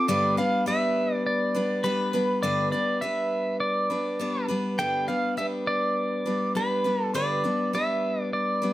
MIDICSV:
0, 0, Header, 1, 3, 480
1, 0, Start_track
1, 0, Tempo, 588813
1, 71, Time_signature, 4, 2, 24, 8
1, 7118, End_track
2, 0, Start_track
2, 0, Title_t, "Pedal steel guitar"
2, 0, Program_c, 0, 26
2, 70, Note_on_c, 0, 74, 97
2, 309, Note_off_c, 0, 74, 0
2, 312, Note_on_c, 0, 77, 96
2, 548, Note_off_c, 0, 77, 0
2, 551, Note_on_c, 0, 76, 91
2, 934, Note_off_c, 0, 76, 0
2, 934, Note_on_c, 0, 74, 91
2, 1028, Note_off_c, 0, 74, 0
2, 1031, Note_on_c, 0, 74, 86
2, 1500, Note_on_c, 0, 71, 77
2, 1716, Note_off_c, 0, 74, 0
2, 1974, Note_off_c, 0, 71, 0
2, 1977, Note_on_c, 0, 74, 93
2, 2205, Note_off_c, 0, 74, 0
2, 2216, Note_on_c, 0, 74, 89
2, 2456, Note_on_c, 0, 76, 83
2, 2469, Note_off_c, 0, 74, 0
2, 2909, Note_off_c, 0, 76, 0
2, 2937, Note_on_c, 0, 74, 87
2, 3630, Note_off_c, 0, 74, 0
2, 3903, Note_on_c, 0, 79, 104
2, 4128, Note_off_c, 0, 79, 0
2, 4142, Note_on_c, 0, 77, 87
2, 4379, Note_off_c, 0, 77, 0
2, 4383, Note_on_c, 0, 76, 88
2, 4448, Note_off_c, 0, 76, 0
2, 4625, Note_on_c, 0, 74, 91
2, 5314, Note_off_c, 0, 74, 0
2, 5352, Note_on_c, 0, 71, 71
2, 5736, Note_off_c, 0, 71, 0
2, 5736, Note_on_c, 0, 69, 71
2, 5828, Note_off_c, 0, 69, 0
2, 5831, Note_on_c, 0, 74, 85
2, 6316, Note_on_c, 0, 76, 81
2, 6325, Note_off_c, 0, 74, 0
2, 6699, Note_off_c, 0, 76, 0
2, 6699, Note_on_c, 0, 74, 81
2, 6790, Note_off_c, 0, 74, 0
2, 6793, Note_on_c, 0, 74, 74
2, 7118, Note_off_c, 0, 74, 0
2, 7118, End_track
3, 0, Start_track
3, 0, Title_t, "Steel-string acoustic guitar"
3, 0, Program_c, 1, 25
3, 67, Note_on_c, 1, 43, 74
3, 71, Note_on_c, 1, 50, 77
3, 71, Note_on_c, 1, 55, 78
3, 73, Note_on_c, 1, 59, 85
3, 76, Note_on_c, 1, 62, 83
3, 78, Note_on_c, 1, 71, 83
3, 294, Note_off_c, 1, 71, 0
3, 301, Note_off_c, 1, 62, 0
3, 304, Note_off_c, 1, 59, 0
3, 304, Note_on_c, 1, 71, 60
3, 308, Note_off_c, 1, 43, 0
3, 310, Note_off_c, 1, 50, 0
3, 310, Note_off_c, 1, 55, 0
3, 310, Note_on_c, 1, 62, 54
3, 314, Note_on_c, 1, 59, 48
3, 319, Note_on_c, 1, 55, 47
3, 529, Note_off_c, 1, 55, 0
3, 536, Note_off_c, 1, 59, 0
3, 539, Note_on_c, 1, 55, 67
3, 540, Note_off_c, 1, 62, 0
3, 546, Note_off_c, 1, 71, 0
3, 546, Note_on_c, 1, 59, 63
3, 550, Note_on_c, 1, 62, 63
3, 556, Note_on_c, 1, 71, 67
3, 1250, Note_off_c, 1, 71, 0
3, 1257, Note_off_c, 1, 62, 0
3, 1260, Note_on_c, 1, 71, 62
3, 1261, Note_off_c, 1, 59, 0
3, 1262, Note_off_c, 1, 55, 0
3, 1267, Note_on_c, 1, 62, 54
3, 1271, Note_on_c, 1, 59, 49
3, 1276, Note_on_c, 1, 55, 49
3, 1487, Note_off_c, 1, 55, 0
3, 1492, Note_off_c, 1, 59, 0
3, 1496, Note_on_c, 1, 55, 65
3, 1500, Note_off_c, 1, 62, 0
3, 1501, Note_on_c, 1, 59, 65
3, 1503, Note_off_c, 1, 71, 0
3, 1510, Note_on_c, 1, 62, 64
3, 1514, Note_on_c, 1, 71, 72
3, 1728, Note_off_c, 1, 71, 0
3, 1733, Note_off_c, 1, 62, 0
3, 1738, Note_on_c, 1, 71, 62
3, 1740, Note_off_c, 1, 59, 0
3, 1742, Note_off_c, 1, 55, 0
3, 1743, Note_on_c, 1, 62, 57
3, 1750, Note_on_c, 1, 59, 52
3, 1754, Note_on_c, 1, 55, 55
3, 1975, Note_off_c, 1, 55, 0
3, 1979, Note_off_c, 1, 59, 0
3, 1980, Note_off_c, 1, 62, 0
3, 1980, Note_on_c, 1, 43, 63
3, 1982, Note_off_c, 1, 71, 0
3, 1983, Note_on_c, 1, 50, 70
3, 1985, Note_on_c, 1, 55, 65
3, 1989, Note_on_c, 1, 59, 76
3, 1990, Note_on_c, 1, 62, 70
3, 1993, Note_on_c, 1, 71, 79
3, 2209, Note_off_c, 1, 71, 0
3, 2216, Note_off_c, 1, 62, 0
3, 2218, Note_off_c, 1, 59, 0
3, 2219, Note_on_c, 1, 71, 45
3, 2223, Note_off_c, 1, 43, 0
3, 2225, Note_off_c, 1, 50, 0
3, 2226, Note_off_c, 1, 55, 0
3, 2226, Note_on_c, 1, 62, 46
3, 2228, Note_on_c, 1, 59, 46
3, 2236, Note_on_c, 1, 55, 39
3, 2450, Note_off_c, 1, 55, 0
3, 2455, Note_off_c, 1, 59, 0
3, 2459, Note_on_c, 1, 55, 59
3, 2461, Note_off_c, 1, 62, 0
3, 2463, Note_off_c, 1, 71, 0
3, 2465, Note_on_c, 1, 59, 53
3, 2471, Note_on_c, 1, 62, 60
3, 2475, Note_on_c, 1, 71, 61
3, 3168, Note_off_c, 1, 71, 0
3, 3173, Note_off_c, 1, 62, 0
3, 3178, Note_on_c, 1, 71, 49
3, 3181, Note_off_c, 1, 59, 0
3, 3183, Note_off_c, 1, 55, 0
3, 3183, Note_on_c, 1, 62, 46
3, 3191, Note_on_c, 1, 59, 39
3, 3193, Note_on_c, 1, 55, 38
3, 3410, Note_off_c, 1, 55, 0
3, 3417, Note_off_c, 1, 59, 0
3, 3419, Note_on_c, 1, 55, 55
3, 3420, Note_off_c, 1, 62, 0
3, 3422, Note_off_c, 1, 71, 0
3, 3427, Note_on_c, 1, 59, 57
3, 3430, Note_on_c, 1, 62, 57
3, 3435, Note_on_c, 1, 71, 59
3, 3645, Note_off_c, 1, 71, 0
3, 3654, Note_off_c, 1, 62, 0
3, 3655, Note_on_c, 1, 71, 53
3, 3657, Note_off_c, 1, 59, 0
3, 3663, Note_off_c, 1, 55, 0
3, 3664, Note_on_c, 1, 62, 49
3, 3666, Note_on_c, 1, 59, 47
3, 3672, Note_on_c, 1, 55, 44
3, 3895, Note_off_c, 1, 55, 0
3, 3896, Note_off_c, 1, 59, 0
3, 3900, Note_off_c, 1, 62, 0
3, 3900, Note_on_c, 1, 43, 66
3, 3901, Note_off_c, 1, 71, 0
3, 3904, Note_on_c, 1, 50, 70
3, 3904, Note_on_c, 1, 55, 69
3, 3906, Note_on_c, 1, 59, 70
3, 3909, Note_on_c, 1, 62, 69
3, 3910, Note_on_c, 1, 71, 76
3, 4130, Note_off_c, 1, 71, 0
3, 4135, Note_off_c, 1, 62, 0
3, 4139, Note_on_c, 1, 71, 47
3, 4140, Note_off_c, 1, 59, 0
3, 4144, Note_off_c, 1, 43, 0
3, 4144, Note_on_c, 1, 62, 48
3, 4146, Note_off_c, 1, 50, 0
3, 4146, Note_off_c, 1, 55, 0
3, 4150, Note_on_c, 1, 59, 40
3, 4154, Note_on_c, 1, 55, 37
3, 4368, Note_off_c, 1, 55, 0
3, 4376, Note_off_c, 1, 59, 0
3, 4378, Note_on_c, 1, 55, 56
3, 4379, Note_off_c, 1, 62, 0
3, 4383, Note_off_c, 1, 71, 0
3, 4386, Note_on_c, 1, 59, 54
3, 4389, Note_on_c, 1, 62, 58
3, 4394, Note_on_c, 1, 71, 59
3, 5090, Note_off_c, 1, 71, 0
3, 5094, Note_off_c, 1, 62, 0
3, 5100, Note_on_c, 1, 71, 50
3, 5101, Note_off_c, 1, 59, 0
3, 5103, Note_off_c, 1, 55, 0
3, 5104, Note_on_c, 1, 62, 44
3, 5111, Note_on_c, 1, 59, 44
3, 5114, Note_on_c, 1, 55, 42
3, 5331, Note_off_c, 1, 55, 0
3, 5336, Note_off_c, 1, 59, 0
3, 5340, Note_on_c, 1, 55, 57
3, 5343, Note_off_c, 1, 62, 0
3, 5344, Note_off_c, 1, 71, 0
3, 5346, Note_on_c, 1, 59, 59
3, 5353, Note_on_c, 1, 62, 62
3, 5356, Note_on_c, 1, 71, 63
3, 5568, Note_off_c, 1, 71, 0
3, 5575, Note_off_c, 1, 62, 0
3, 5578, Note_on_c, 1, 71, 49
3, 5580, Note_off_c, 1, 59, 0
3, 5585, Note_off_c, 1, 55, 0
3, 5585, Note_on_c, 1, 62, 47
3, 5589, Note_on_c, 1, 59, 38
3, 5593, Note_on_c, 1, 55, 39
3, 5815, Note_off_c, 1, 55, 0
3, 5818, Note_off_c, 1, 59, 0
3, 5821, Note_off_c, 1, 62, 0
3, 5822, Note_on_c, 1, 43, 65
3, 5824, Note_off_c, 1, 71, 0
3, 5824, Note_on_c, 1, 50, 68
3, 5825, Note_on_c, 1, 55, 67
3, 5828, Note_on_c, 1, 59, 70
3, 5831, Note_on_c, 1, 62, 80
3, 5832, Note_on_c, 1, 71, 80
3, 6053, Note_off_c, 1, 71, 0
3, 6058, Note_off_c, 1, 62, 0
3, 6062, Note_off_c, 1, 59, 0
3, 6062, Note_on_c, 1, 71, 45
3, 6066, Note_off_c, 1, 43, 0
3, 6067, Note_off_c, 1, 50, 0
3, 6067, Note_off_c, 1, 55, 0
3, 6068, Note_on_c, 1, 62, 50
3, 6072, Note_on_c, 1, 59, 45
3, 6077, Note_on_c, 1, 55, 42
3, 6294, Note_off_c, 1, 55, 0
3, 6299, Note_off_c, 1, 59, 0
3, 6304, Note_on_c, 1, 55, 55
3, 6305, Note_off_c, 1, 62, 0
3, 6306, Note_off_c, 1, 71, 0
3, 6309, Note_on_c, 1, 59, 55
3, 6315, Note_on_c, 1, 62, 58
3, 6317, Note_on_c, 1, 71, 63
3, 7015, Note_off_c, 1, 71, 0
3, 7019, Note_off_c, 1, 62, 0
3, 7025, Note_on_c, 1, 71, 50
3, 7026, Note_off_c, 1, 59, 0
3, 7028, Note_off_c, 1, 55, 0
3, 7029, Note_on_c, 1, 62, 43
3, 7036, Note_on_c, 1, 59, 49
3, 7039, Note_on_c, 1, 55, 38
3, 7118, Note_off_c, 1, 55, 0
3, 7118, Note_off_c, 1, 59, 0
3, 7118, Note_off_c, 1, 62, 0
3, 7118, Note_off_c, 1, 71, 0
3, 7118, End_track
0, 0, End_of_file